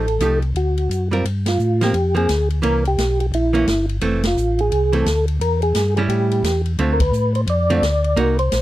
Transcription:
Already playing: tonewheel organ A1 A4
0.08 ride
0.19 tonewheel organ C2, hollow-body jazz guitar F3 A3 D#4 G4, hi-hat pedal, ride
0.42 ride
0.55 tonewheel organ D2 F#4, ride
0.77 ride
0.90 tonewheel organ F#2, hi-hat pedal, ride
1.11 hollow-body jazz guitar G3 C4 F4 A#4, ride
1.25 tonewheel organ G2, ride
1.46 tonewheel organ F4, snare, ride
1.59 tonewheel organ A2, hi-hat pedal
1.81 hollow-body jazz guitar F3 A#3 C4, tonewheel organ G4, snare, ride
1.94 tonewheel organ F2, ride
2.15 hollow-body jazz guitar F3 A#3 C4, tonewheel organ G#4, ride
2.29 tonewheel organ D2, snare, hi-hat pedal, ride
2.50 ride
2.62 tonewheel organ C2 A#4, hollow-body jazz guitar E3 A#3 C#4, ride
2.85 tonewheel organ G4, ride
2.97 tonewheel organ B1, snare, hi-hat pedal, ride
3.20 tonewheel organ G4, ride
3.32 tonewheel organ A#1 E4, ride
3.53 hollow-body jazz guitar E3 A#3 C#4, ride
3.66 tonewheel organ G1, snare, hi-hat pedal, ride
3.89 ride
4.01 tonewheel organ F1, hollow-body jazz guitar E3 A3 C4, ride
4.23 tonewheel organ F4, snare, ride
4.37 tonewheel organ A1, hi-hat pedal
4.59 tonewheel organ G#4, ride
4.72 tonewheel organ C2, ride
4.93 hollow-body jazz guitar E3 A3 C4, tonewheel organ A4, ride
5.06 tonewheel organ D2, snare, hi-hat pedal, ride
5.28 ride
5.40 tonewheel organ E2 A#4, ride
5.62 tonewheel organ G#4, ride
5.75 tonewheel organ G2, snare, hi-hat pedal, ride
5.96 hollow-body jazz guitar G3 C#4 E4, tonewheel organ G#4, ride
6.08 tonewheel organ A2 G4, ride
6.31 ride
6.43 tonewheel organ E2, snare, hi-hat pedal, ride
6.66 ride
6.78 tonewheel organ D2, hollow-body jazz guitar D3 A3 C4 F4, ride
6.93 tonewheel organ A#4
7.00 tonewheel organ B4, kick, ride
7.12 tonewheel organ A2, hi-hat pedal
7.35 tonewheel organ C5, ride
7.47 tonewheel organ F2 D5, ride
7.70 hollow-body jazz guitar D3 A3 C4 F4, ride
7.82 tonewheel organ D2, snare, hi-hat pedal, ride
8.04 ride
8.16 tonewheel organ C2 A#4, hollow-body jazz guitar A#3 D#4 F#4, ride
8.39 tonewheel organ C5, ride
8.52 tonewheel organ A#1, snare, hi-hat pedal, ride

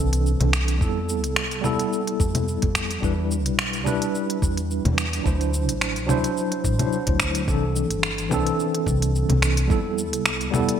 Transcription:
Already playing: upright bass C2, tine electric piano E3 C4 D4 A4
0.13 closed hi-hat, shaker
0.26 shaker
0.40 upright bass C2, closed hi-hat, low conga
0.53 finger snap, shaker
0.68 closed hi-hat, shaker
0.78 upright bass F2, tine electric piano G3 B3 E4, kick, shaker
0.83 tine electric piano A4
1.09 shaker
1.24 upright bass C2, closed hi-hat, shaker
1.36 finger snap, shaker
1.51 closed hi-hat, shaker
1.61 upright bass F2, tine electric piano G3 B3 E4, low conga, shaker
1.66 tine electric piano A4
1.79 closed hi-hat, shaker
1.93 shaker
2.07 closed hi-hat
2.20 upright bass F2, kick, shaker
2.35 closed hi-hat, low conga, shaker
2.48 shaker
2.62 upright bass F2, kick, closed hi-hat
2.75 finger snap, kick, shaker
2.91 closed hi-hat, shaker
3.00 upright bass E2, tine electric piano G3 D4 E4, kick, shaker
3.05 tine electric piano B4
3.31 shaker
3.46 upright bass B1, closed hi-hat, shaker
3.59 finger snap, shaker
3.73 closed hi-hat, shaker
3.84 upright bass E2, tine electric piano G3 D4 E4, low conga, shaker
3.88 tine electric piano B4
4.02 closed hi-hat, shaker
4.15 shaker
4.30 closed hi-hat
4.42 upright bass E2, kick, shaker
4.57 closed hi-hat, shaker
4.71 shaker
4.85 upright bass E2, closed hi-hat, low conga
4.98 finger snap, shaker
5.13 closed hi-hat, shaker
5.23 upright bass D2, tine electric piano F#3 D4 E4, kick, shaker
5.27 tine electric piano C5
5.41 closed hi-hat, shaker
5.54 shaker
5.69 upright bass A1, closed hi-hat, shaker
5.81 finger snap, shaker
5.96 closed hi-hat, shaker
6.06 upright bass D2, tine electric piano F#3 D4 E4, low conga, shaker
6.11 tine electric piano C5
6.24 closed hi-hat, shaker
6.37 shaker
6.52 closed hi-hat
6.64 upright bass A1, kick, shaker
6.78 tine electric piano F#3 D4 E4 C5, closed hi-hat, low conga, shaker
6.92 shaker
7.07 upright bass D2, kick, closed hi-hat
7.20 finger snap, kick, shaker
7.35 closed hi-hat, shaker
7.46 upright bass C2, tine electric piano E3 C4 D4, kick, shaker
7.50 tine electric piano A4
7.76 shaker
7.90 upright bass G1, closed hi-hat, shaker
8.03 finger snap, shaker
8.18 closed hi-hat, shaker
8.29 upright bass C2, tine electric piano E3 C4 D4, low conga, shaker
8.34 tine electric piano A4
8.47 closed hi-hat, shaker
8.60 shaker
8.75 closed hi-hat
8.86 upright bass C2, kick, shaker
9.02 closed hi-hat, shaker
9.15 shaker
9.29 upright bass C2, closed hi-hat, low conga
9.42 finger snap, shaker
9.57 closed hi-hat, shaker
9.67 upright bass F2, tine electric piano G3 B3 E4, kick, shaker
9.72 tine electric piano A4
9.98 shaker
10.13 upright bass C2, closed hi-hat, shaker
10.26 finger snap, shaker
10.41 closed hi-hat, shaker
10.51 upright bass F2, tine electric piano G3 B3 E4 A4, low conga, shaker
10.69 closed hi-hat, shaker

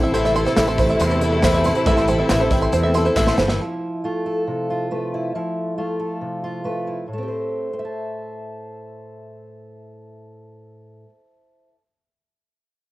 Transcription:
Already playing: fretless electric bass A1, felt piano A1 A2 A3 C4 E4 C5 E5, string section C3 A3 E4, five-string banjo C5
0.02 twelve-string acoustic guitar C4 E4 A4, five-string banjo E5
0.14 twelve-string acoustic guitar A2 E3 C4 E4 A4, five-string banjo C5, closed hi-hat, tambourine
0.25 five-string banjo E5, snare, closed hi-hat
0.34 twelve-string acoustic guitar E3 C4 E4 A4, felt piano A3 C4 E4 C5 E5, five-string banjo C6, closed hi-hat, tambourine
0.45 twelve-string acoustic guitar C4 E4 A4, five-string banjo C5, snare, closed hi-hat
0.55 fretless electric bass A1, twelve-string acoustic guitar A2 E3 C4 E4 A4, felt piano A3 C4 E4 C5 E5, five-string banjo E5, snare, clap, closed hi-hat, tambourine
0.67 twelve-string acoustic guitar C4 E4 A4, five-string banjo C6, closed hi-hat
0.78 twelve-string acoustic guitar E3 C4 E4 A4, felt piano A3 C4 E4 C5 E5, five-string banjo C5, kick, closed hi-hat, tambourine
0.89 five-string banjo E5, closed hi-hat
1.00 fretless electric bass E2, felt piano A3 C4 E4 C5 E5, five-string banjo C6, clap, closed hi-hat, tambourine
1.10 twelve-string acoustic guitar C4 E4 A4, five-string banjo C5, closed hi-hat
1.21 twelve-string acoustic guitar E3 C4 E4 A4, felt piano A3 C4 E4 C5 E5, closed hi-hat
1.32 twelve-string acoustic guitar C4 E4 A4
1.42 twelve-string acoustic guitar A2 E3 C4 E4 A4, felt piano A3 C4 E4 C5 E5, five-string banjo C5, kick, snare, clap, closed hi-hat, tambourine
1.54 five-string banjo E5, closed hi-hat
1.64 felt piano A1 A2 A3 C4 E4 C5 E5, twelve-string acoustic guitar E3 C4 E4 A4, five-string banjo C6, closed hi-hat, tambourine
1.75 five-string banjo C5, closed hi-hat
1.86 fretless electric bass A1, twelve-string acoustic guitar A2 E3 C4 E4 A4, felt piano A3 C4 E4 C5 E5, five-string banjo E5, kick, closed hi-hat, tambourine
1.97 five-string banjo C6, snare, closed hi-hat
2.08 twelve-string acoustic guitar E3 C4 E4 A4, felt piano A3 C4 E4 C5 G5, five-string banjo C5, closed hi-hat, tambourine
2.18 twelve-string acoustic guitar C4 E4 A4, five-string banjo E5
2.29 fretless electric bass A1, twelve-string acoustic guitar A2 E3 C4 E4 A4, felt piano A3 C4 E4 C5 E5, five-string banjo C6, snare, clap, closed hi-hat, tambourine
2.40 twelve-string acoustic guitar C4 E4 A4, five-string banjo C5
2.51 twelve-string acoustic guitar E3 C4 E4 A4, felt piano A3 C4 E4 C5 G5, five-string banjo E5, kick, closed hi-hat, tambourine
2.62 five-string banjo C6, closed hi-hat
2.72 fretless electric bass E2, felt piano A3 C4 E4 C5 E5, five-string banjo C5, closed hi-hat, tambourine
2.83 twelve-string acoustic guitar C4 E4 A4, five-string banjo E5
2.94 twelve-string acoustic guitar E3 C4 E4 A4, felt piano A3 C4 E4 C5 E5, five-string banjo C6, closed hi-hat, tambourine
3.05 twelve-string acoustic guitar C4 E4 A4, five-string banjo C5, closed hi-hat
3.15 fretless electric bass A1, twelve-string acoustic guitar A2 E3 C4 E4 A4, felt piano A3 C4 E4 C5 E5, five-string banjo E5, kick, snare, clap, tambourine
3.27 five-string banjo C6, snare
3.37 fretless electric bass G1, twelve-string acoustic guitar E3 C4 E4 A4, felt piano A3 C4 E4 C5 E5, five-string banjo C5, snare, tambourine
3.48 five-string banjo E5, snare
3.60 steel-string acoustic guitar F3 E4
4.04 steel-string acoustic guitar A3 F4
4.26 steel-string acoustic guitar A4
4.47 steel-string acoustic guitar C3
4.70 steel-string acoustic guitar F4
4.91 steel-string acoustic guitar A3 B4
5.14 steel-string acoustic guitar E4
5.35 steel-string acoustic guitar F3 E4
5.78 steel-string acoustic guitar A3 F4
6.00 steel-string acoustic guitar A4
6.21 steel-string acoustic guitar C3
6.44 steel-string acoustic guitar F4
6.64 steel-string acoustic guitar A3 B4
6.87 steel-string acoustic guitar E4
7.08 steel-string acoustic guitar A2
7.13 steel-string acoustic guitar A3
7.18 steel-string acoustic guitar C4
7.23 steel-string acoustic guitar G4
7.28 steel-string acoustic guitar C5
7.73 steel-string acoustic guitar C5
7.79 steel-string acoustic guitar E5
7.85 steel-string acoustic guitar A5

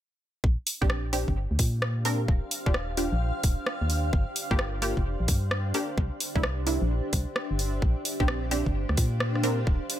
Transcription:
0.44 fm bass A#1, ambient pad D4, kick
0.67 open hi-hat
0.72 ambient pad G4
0.81 fm bass A#1, synth stab C4 D4 G4, kick
0.89 ambient pad C5, cross-stick
1.12 synth stab C4 D4 G4, ambient pad F5, open hi-hat
1.28 fm bass G1, kick
1.51 fm bass D2
1.59 fm bass A#2, kick, open hi-hat
1.82 cross-stick
2.05 synth stab C4 D4 A#4, open hi-hat
2.28 fm bass D#1, kick
2.51 open hi-hat
2.66 fm bass D#1, synth stab D4 F4 G4, kick
2.74 cross-stick
2.97 synth stab D4 F4 G4, open hi-hat
3.13 fm bass A#1
3.43 fm bass D#1, kick, open hi-hat
3.67 cross-stick
3.82 fm bass D#2
3.90 open hi-hat
4.13 fm bass G1, kick
4.36 open hi-hat
4.51 fm bass G1, synth stab A#3 F4 G4, kick
4.59 cross-stick
4.82 synth stab A#3 F4 G4, open hi-hat
4.97 fm bass F1, kick
5.20 fm bass A#1
5.28 fm bass G2, kick, open hi-hat
5.51 cross-stick
5.74 synth stab A#3 D4 G4, open hi-hat
5.98 fm bass C2, kick
6.20 open hi-hat
6.35 fm bass C2, synth stab A#3 D4 E4, kick
6.43 cross-stick
6.67 synth stab A#3 D4 E4, open hi-hat
6.82 fm bass A#1
7.13 fm bass C2, kick, open hi-hat
7.36 cross-stick
7.51 fm bass G1
7.59 open hi-hat
7.82 fm bass A#1, kick
8.01 ambient pad F5, open hi-hat
8.20 fm bass A#1, synth stab C4 D4 G4, kick
8.28 cross-stick
8.51 synth stab C4 D4 G4, open hi-hat
8.66 fm bass G1, kick
8.89 fm bass D2, cross-stick
8.97 fm bass A#2, kick, open hi-hat
9.20 cross-stick
9.36 cross-stick
9.44 synth stab C4 D4 A#4, open hi-hat
9.67 fm bass D#1, kick
9.90 open hi-hat

